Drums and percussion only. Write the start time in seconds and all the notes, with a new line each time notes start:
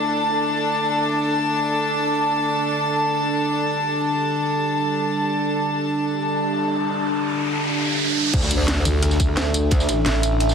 8.33 kick, closed hi-hat, crash, ride
8.42 snare, tambourine
8.51 closed hi-hat, open hi-hat, tambourine
8.68 snare, closed hi-hat, ride
8.85 closed hi-hat, ride, tambourine
9.02 cross-stick, closed hi-hat, ride
9.11 snare, tambourine
9.20 kick, closed hi-hat, ride, tambourine
9.28 cross-stick
9.37 snare, closed hi-hat, ride
9.54 closed hi-hat, ride, tambourine
9.71 kick, closed hi-hat, ride
9.80 snare, tambourine
9.89 snare, closed hi-hat, ride, tambourine
10.06 snare, closed hi-hat, ride
10.23 closed hi-hat, ride, tambourine
10.32 ride
10.40 closed hi-hat, ride
10.49 snare, tambourine